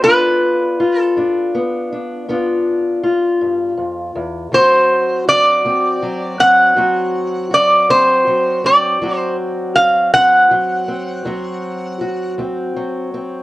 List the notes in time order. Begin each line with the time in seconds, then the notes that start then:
0.02 G2 B3 D4 F4 B4
0.80 F4
1.01 A4
1.17 G2 D4
1.55 B3
1.93 D4
2.29 G2 B3 D4 F4
3.04 F4
3.41 G2
3.77 F2
4.15 E2
4.52 D2 F#3 C4 F#4 C5
5.28 F#4 D5
5.65 D2 C4
6.03 F#3
6.39 C4 F#5
6.76 D2 F#3 C4 F#4
7.51 F#4 D5
7.89 D2 C4 C5
8.27 F#3
8.64 C4 D5
9.01 D2 F#3 C4 F#4
9.17 C5
9.76 F#4 F5
10.13 D2 C4 F#5
10.51 F#3
10.88 C4
11.25 D2 F#3 C4 F#4
12.01 F#4
12.38 D2 C4
12.76 F#3
13.14 C4